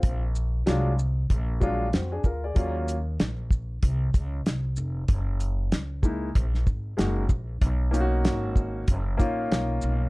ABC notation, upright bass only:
X:1
M:4/4
L:1/8
Q:"Swing 16ths" 1/4=95
K:Bbm
V:1 name="Upright bass" clef=bass
B,,,2 C,,2 B,,,2 F,, =D,, | E,,2 B,,,2 C,, D,, C,, F,,, | G,,,2 D,,2 B,,, A,,, G,,, B,,, | =B,,,2 A,,,2 ^F,,, ^A,,, B,,, B,,, |]